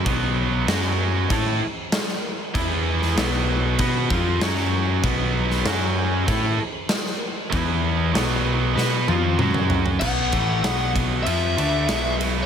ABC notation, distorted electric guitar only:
X:1
M:4/4
L:1/8
Q:1/4=96
K:Bm
V:1 name="Distorted electric guitar"
[B,,F,B,]2 [F,CF]2 [A,EA] z3 | [E,B,E]2 [B,,F,B,]2 [B,FB] [^E,=C^E] [F,^CF]2 | [B,,F,B,]2 [F,CF]2 [A,EA] z3 | [E,B,E]2 [B,,F,B,]2 [B,FB] [^E,=C^E] [F,^CF]2 |
[B,,F,B,] [A,,E,A,] [B,,F,B,]2 [^E,=C^E] [D,A,D] [B,,F,B,]2 |]